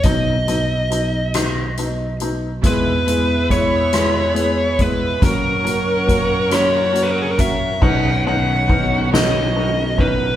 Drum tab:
CC |------|------|------|x-----|
RD |------|------|------|-xxxxx|
HH |xxxxxx|xxxxxx|xxxxxx|------|
SD |---r--|---r--|---r--|---o--|
BD |o-----|o-o--o|o-o--o|o-o--o|